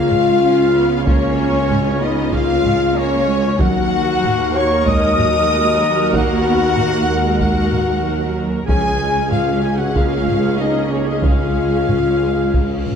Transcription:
Already playing: C#2 A#3 C#4 F4 F5
0.11 G#3, taiko low-mid
0.43 C#4
0.74 B3
1.06 A#3 C#4 C#5, taiko
1.69 G#3, taiko low-mid
2.01 B3 D#4 D#5
2.31 A#3 F4 F5, taiko
2.63 G#3, taiko low-mid
2.95 A#3 C#4 C#5
3.27 G#3
3.60 D#2 D#3 F#3 F#4 A#4 F#5, taiko
4.23 A#3, taiko low-mid
4.54 C#5 C#6
4.86 G#3 D#5 D#6, taiko
5.18 F#3, taiko low-mid
5.51 G#3
5.82 F#3
6.13 A#3 F#4 F#5, taiko
6.46 B3
6.77 A#3, taiko low-mid
7.09 G#3
7.40 F#4 F#5, taiko
7.73 taiko low-mid
8.05 F#3
8.67 C#2 F3 C#4 G#4 G#5, taiko
8.99 G#3
9.30 F4 F5, taiko low-mid
9.61 G#4 G#5
9.78 F#4 F#5
9.93 A#3 F4 F5, taiko
10.25 G#3, taiko low-mid
10.56 A#3 D#4 D#5
10.60 D#5
10.90 C#4 C#5
11.06 D#4 D#5
11.22 G#3 F4 F5, taiko, cymbal swell
11.89 taiko low-mid
12.54 taiko
12.86 taiko low-mid

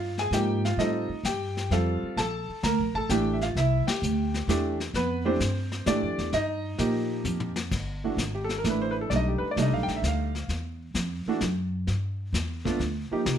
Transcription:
Already playing: G2 F4 F5
0.18 G#4 G#5, snare
0.31 G#2 F3 A#3 D#4 G4 G5, snare, hi-hat pedal
0.65 F4 F5, snare
0.77 A2 G3 C4 D#4 F4 A4 D#5, brush sweep, snare
1.09 muted upright bass stroke
1.23 G2 G5, snare, hi-hat pedal
1.28 G4
1.57 snare
1.70 F2 G3 C4 F4 A4 F5, snare
2.02 muted upright bass stroke
2.17 A#1 A4 A5, brush sweep, snare
2.49 muted upright bass stroke
2.63 D2 A#4 A#5, snare, hi-hat pedal
2.79 A#1
2.94 A1 A4 A5
3.09 A1 E3 A3 D4 G4 G5, snare, hi-hat pedal
3.33 E5
3.41 F4 F5, snare
3.55 C2 E4 E5, brush sweep, snare
3.87 G4 G5, snare, ride
4.02 D2, hi-hat pedal
4.34 snare
4.47 E2 E3 A3 D4 G4, snare, hi-hat pedal
4.80 snare
4.94 F2 B3 B4, brush sweep, snare
5.25 E3 A3 C4 D4 G4 C5
5.40 G2, snare, hi-hat pedal
5.72 snare
5.86 A2 E3 A3 D4 G4 D5, snare, hi-hat pedal
6.02 F2
6.18 E2, snare
6.33 G2 D#4 D#5, brush sweep, snare
6.78 A#2 F3 A#3 D#4 G4, snare, hi-hat pedal
7.24 F2, hi-hat pedal, mid tom
7.40 mid tom
7.56 snare
7.71 G1, brush sweep, kick, snare, crash
8.04 E3 A3 D4 F#4
8.17 G#1, snare, hi-hat pedal
8.35 G4
8.44 A4
8.49 snare
8.58 A#4
8.64 A1 E3 A3 D4 E4, snare, hi-hat pedal
8.70 B4
8.82 C5
8.91 B4
9.01 A4
9.10 B1 G3 A3 D4 D#4 D5, brush sweep, snare
9.16 D#5
9.28 G4
9.38 B4, muted upright bass stroke
9.51 D5
9.56 C2 G3 A3 D4 D#4, snare, hi-hat pedal
9.62 D#5
9.71 B1 F5
9.83 A1 G5
9.88 snare
9.96 E5
10.02 D2, snare, hi-hat pedal
10.08 F5
10.35 snare
10.48 E2, brush sweep, snare
10.94 F2, snare, hi-hat pedal
11.26 E3 A3 D4 F#4, muted upright bass stroke
11.41 F#2, snare, hi-hat pedal
11.87 G2, brush sweep, snare
12.33 E2, snare, hi-hat pedal
12.65 A3 B3 D4 F4, kick, snare
12.79 D2, snare
13.11 F3 A#3 D#4 G4, muted upright bass stroke
13.25 C2, snare

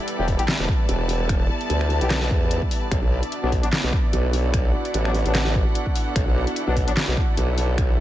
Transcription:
Already playing: G3 B3 E4 A4 B4 D5 G5
0.08 closed hi-hat
0.19 E1 B3 E4 G4 A5
0.28 kick, open hi-hat
0.39 B3 E4 G4, closed hi-hat
0.48 snare, clap, closed hi-hat
0.59 E1
0.68 kick
0.89 E1, closed hi-hat
1.09 open hi-hat
1.29 finger snap, kick, closed hi-hat
1.61 closed hi-hat
1.70 D2, closed hi-hat
1.81 finger snap
1.90 open hi-hat
2.01 B1 B3 E4 G4, closed hi-hat
2.10 snare, clap, closed hi-hat
2.31 E2, kick
2.51 closed hi-hat
2.62 kick
2.71 open hi-hat
2.91 B1 D4 E4 F#4 D5, finger snap, kick, closed hi-hat
3.03 B1
3.17 A4
3.23 closed hi-hat
3.32 closed hi-hat
3.43 B1 F#3 B3 D4
3.52 kick, open hi-hat
3.63 F#3 B3 D4, closed hi-hat
3.73 snare, clap, closed hi-hat
3.84 B1
3.93 F#5, kick
4.13 B1, closed hi-hat
4.33 open hi-hat
4.54 finger snap, kick, closed hi-hat
4.85 closed hi-hat
4.94 A1, closed hi-hat
5.05 F#3 B3 D4, finger snap
5.14 open hi-hat
5.26 A1 F#3 B3 D4, closed hi-hat
5.35 snare, clap, closed hi-hat
5.55 kick
5.75 closed hi-hat
5.86 kick
5.96 open hi-hat
6.16 B1, finger snap, kick, closed hi-hat
6.27 B1
6.47 closed hi-hat
6.56 closed hi-hat
6.67 B1 F#3 B3 D4
6.77 kick, open hi-hat
6.88 F#3 B3 D4, closed hi-hat
6.97 snare, clap, closed hi-hat
7.08 B1
7.17 kick
7.37 B1, closed hi-hat
7.58 open hi-hat
7.78 finger snap, kick, closed hi-hat

